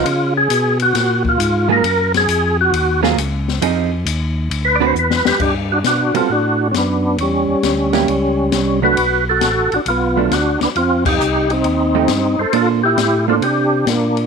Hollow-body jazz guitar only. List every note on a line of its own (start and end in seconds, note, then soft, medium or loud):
1.69 1.82 F#3 medium
1.69 1.82 A#3 medium
1.69 1.82 F4 medium
1.69 1.82 G#4 medium
3.03 3.16 F#3 medium
3.03 3.16 A#3 medium
3.03 3.16 F4 medium
3.03 3.16 G#4 loud
3.62 3.89 F3 medium
3.62 3.89 C4 medium
3.62 3.89 D#4 medium
3.62 3.89 G#4 medium
4.80 4.94 D3 medium
4.80 4.94 C4 medium
4.80 4.94 F#4 medium
4.80 4.94 B4 loud
6.14 6.28 G3 medium
6.14 6.28 B3 medium
6.14 6.28 F#4 medium
6.14 6.28 A4 medium
7.93 8.06 F#3 medium
7.93 8.06 A#3 medium
7.93 8.07 E4 medium
7.93 8.07 G4 medium
8.82 8.95 F#3 medium
8.82 8.96 A3 medium
8.82 8.96 D4 medium
10.17 10.30 F#3 medium
10.17 10.30 A3 medium
10.17 10.30 D4 medium
11.95 12.08 F3 medium
11.95 12.08 A3 medium
11.95 12.08 D#4 medium
11.95 12.08 G4 medium
12.53 12.80 A#3 soft
12.53 12.81 D4 soft
12.53 12.81 A4 soft
12.53 12.81 C5 medium
13.28 13.41 A#3 medium
13.28 13.42 D4 medium
13.28 13.42 A4 medium
13.28 13.42 C5 medium